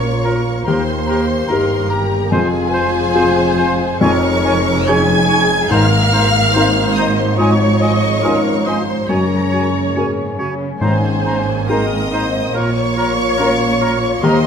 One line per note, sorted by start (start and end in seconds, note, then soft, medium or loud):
0.00 0.67 A#1 medium
0.00 0.68 A#2 medium
0.00 0.70 A#2 soft
0.00 2.29 A#3 soft
0.00 0.64 C#4 soft
0.00 0.64 F4 soft
0.00 0.67 F4 soft
0.00 0.65 A#4 soft
0.00 0.25 C#5 medium
0.00 0.68 C#5 medium
0.00 0.64 C#6 medium
0.24 0.42 F4 soft
0.24 0.67 A#4 medium
0.24 0.41 A#4 soft
0.24 0.34 A#5 soft
0.64 1.50 D#2 medium
0.64 1.48 D#2 medium
0.64 2.29 G4 medium
0.64 0.83 G4 medium
0.64 0.83 A#4 medium
0.64 1.88 C5 medium
0.64 1.48 C5 medium
0.64 0.74 A#5 soft
0.64 1.88 C6 medium
1.07 1.26 G4 medium
1.07 1.25 A#4 soft
1.07 1.16 A#5 soft
1.48 2.31 G1 medium
1.48 2.31 G2 medium
1.48 2.29 D#4 soft
1.48 1.66 G4 medium
1.48 2.29 G4 soft
1.48 1.90 A#4 medium
1.48 1.65 A#4 medium
1.48 2.29 A#4 soft
1.48 1.57 A#5 medium
1.89 2.32 G4 medium
1.89 2.08 G4 medium
1.89 2.32 A#4 medium
1.89 2.06 A#4 soft
1.89 2.00 A#5 medium
1.89 2.33 A#5 medium
2.30 4.01 F1 medium
2.30 3.13 F2 medium
2.30 4.02 F2 medium
2.30 5.68 G#3 medium
2.30 3.84 F4 medium
2.30 2.49 F4 medium
2.30 2.74 G#4 medium
2.30 4.02 G#4 medium
2.30 2.49 C5 medium
2.30 2.40 G#5 medium
2.30 4.02 G#5 loud
2.70 2.89 F4 medium
2.70 4.02 C5 medium
2.70 2.90 C5 medium
2.70 2.80 G#5 medium
3.14 3.98 C4 medium
3.14 3.30 F4 medium
3.14 3.98 F4 soft
3.14 3.98 G#4 medium
3.14 3.32 C5 medium
3.14 3.25 G#5 medium
3.57 3.74 F4 medium
3.57 3.74 C5 medium
3.57 3.67 G#5 medium
4.00 5.68 F1 medium
4.00 4.85 F2 medium
4.00 5.68 F2 medium
4.00 9.05 D#4 medium
4.00 4.17 D#4 medium
4.00 4.87 A#4 medium
4.00 4.18 C#5 medium
4.00 4.87 C#5 medium
4.00 4.12 G#5 medium
4.00 4.86 C#6 loud
4.44 4.60 D#4 medium
4.44 4.61 C#5 medium
4.44 4.54 G#5 medium
4.87 5.68 C#4 medium
4.87 5.03 D#4 medium
4.87 5.68 D#4 medium
4.87 5.72 G#4 medium
4.87 5.68 G#4 medium
4.87 5.03 C#5 medium
4.87 4.97 G#5 medium
4.87 5.73 G#5 medium
4.87 5.72 G#6 loud
5.29 5.46 D#4 medium
5.29 5.45 C#5 medium
5.29 5.39 G#5 medium
5.70 9.10 G#1 medium
5.70 6.52 G#2 medium
5.70 6.93 G#2 medium
5.70 9.10 G#2 medium
5.70 7.38 A#3 medium
5.70 5.86 D#4 medium
5.70 6.55 A#4 medium
5.70 5.87 C5 medium
5.70 6.97 F5 loud
5.70 5.81 A#5 medium
5.70 6.96 F6 loud
6.12 6.28 D#4 medium
6.12 6.29 C5 medium
6.12 6.23 A#5 medium
6.54 7.35 C4 soft
6.54 6.71 D#4 medium
6.54 7.35 D#4 soft
6.54 7.36 A#4 soft
6.54 6.70 C5 medium
6.54 7.39 C5 medium
6.54 6.66 A#5 medium
6.95 7.13 D#4 medium
6.95 7.13 C5 medium
6.95 7.19 D#5 medium
6.95 7.07 A#5 medium
6.95 7.17 D#6 medium
7.17 7.40 C5 medium
7.17 7.39 C6 medium
7.38 8.22 G#2 medium
7.38 9.06 F3 medium
7.38 7.54 F4 medium
7.38 7.80 C#5 medium
7.38 8.64 C#5 medium
7.38 7.54 D#5 medium
7.38 7.50 G#5 medium
7.38 8.64 C#6 loud
7.80 7.96 F4 medium
7.80 8.24 D#5 medium
7.80 7.97 D#5 medium
7.80 7.92 G#5 soft
8.23 9.07 C#4 soft
8.23 9.07 D#4 soft
8.23 8.39 F4 medium
8.23 9.07 F4 soft
8.23 8.67 A#4 medium
8.23 8.40 D#5 medium
8.23 8.34 G#5 medium
8.65 8.83 F4 soft
8.65 9.09 C5 medium
8.65 8.82 D#5 soft
8.65 8.78 G#5 soft
8.65 9.09 C6 medium
9.09 10.62 F#1 medium
9.09 9.93 F#2 medium
9.09 9.88 F#2 medium
9.09 10.50 G#3 medium
9.09 11.71 C#4 medium
9.09 9.26 F#4 soft
9.09 9.96 A#4 medium
9.09 9.25 C#5 medium
9.09 10.40 C#5 medium
9.09 9.19 G#5 soft
9.09 9.96 A#5 medium
9.52 9.69 F#4 soft
9.52 9.68 C#5 medium
9.52 9.64 G#5 soft
9.95 10.37 G#2 medium
9.95 10.79 C#4 soft
9.95 10.11 F#4 soft
9.95 10.79 G#4 soft
9.95 10.79 A#4 soft
9.95 10.11 C#5 soft
9.95 10.06 G#5 soft
10.39 10.82 C#3 medium
10.39 10.55 F#4 soft
10.39 10.55 C#5 soft
10.39 10.50 G#5 soft
10.81 12.52 G#1 medium
10.81 11.67 G#2 medium
10.81 12.09 G#2 medium
10.81 12.52 G#2 medium
10.81 14.47 A#3 medium
10.81 10.97 D#4 medium
10.81 11.66 G#4 medium
10.81 10.97 C5 medium
10.81 11.66 C5 medium
10.81 11.66 G#5 medium
10.81 10.93 A#5 medium
11.25 11.41 D#4 soft
11.25 11.42 C5 soft
11.25 11.36 A#5 medium
11.68 12.55 C4 medium
11.68 12.51 C4 soft
11.68 11.85 D#4 medium
11.68 12.51 G#4 soft
11.68 12.13 A#4 medium
11.68 12.52 A#4 soft
11.68 11.86 C5 medium
11.68 12.56 D#5 medium
11.68 11.81 A#5 medium
11.68 12.55 D#6 medium
12.12 12.28 D#4 medium
12.12 12.29 C5 soft
12.12 12.56 C5 medium
12.12 12.24 A#5 medium
12.53 14.21 A#1 medium
12.53 13.37 A#2 medium
12.53 14.21 A#2 medium
12.53 14.20 F4 medium
12.53 12.70 F4 medium
12.53 12.71 A#4 medium
12.53 14.23 C#5 medium
12.53 14.24 C#5 medium
12.53 12.65 A#5 medium
12.53 14.24 C#6 loud
12.96 13.12 F4 medium
12.96 13.13 A#4 medium
12.96 13.08 A#5 medium
13.37 14.20 C#4 soft
13.37 13.54 F4 medium
13.37 14.20 F4 soft
13.37 13.53 A#4 medium
13.37 14.21 A#4 soft
13.37 13.50 A#5 medium
13.80 13.96 F4 medium
13.80 13.97 A#4 medium
13.80 13.91 A#5 medium
14.21 14.47 D#2 medium
14.21 14.47 G4 medium
14.21 14.39 G4 medium
14.21 14.39 A#4 medium
14.21 14.47 C5 medium
14.21 14.47 D#5 medium
14.21 14.35 A#5 medium
14.21 14.47 C6 loud